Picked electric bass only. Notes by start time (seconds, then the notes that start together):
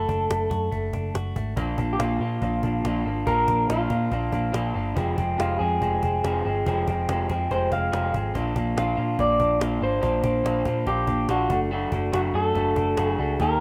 0.09 F#1
0.30 F#1
0.51 F#2
0.72 F#1
0.93 F#1
1.14 F#1
1.36 G#1
1.57 A#1
1.78 A#1
2.00 A#1
2.20 A#2
2.42 A#1
2.63 A#1
2.85 A#1
3.05 G#1
3.27 A#1
3.48 A#1
3.69 A#1
3.90 A#2
4.12 A#1
4.33 A#1
4.54 A#1
4.75 G1
4.97 F1
5.18 F1
5.39 F1
5.60 F2
5.82 F1
6.03 F1
6.24 F1
6.46 G1
6.67 F1
6.88 F1
7.09 F1
7.30 F2
7.51 F1
7.72 F1
7.93 F1
8.14 G#1
8.35 A#1
8.56 A#1
8.76 A#1
8.98 A#2
9.19 A#1
9.40 A#1
9.60 A#1
9.81 G#1
10.03 A#1
10.23 A#1
10.44 A#1
10.66 A#2
10.87 A#1
11.07 A#1
11.29 A#1
11.50 F#1
11.92 F#1
12.13 F#1
12.34 F#2
12.56 F#1
12.77 F#1
12.98 F#1
13.19 C#2
13.40 D#2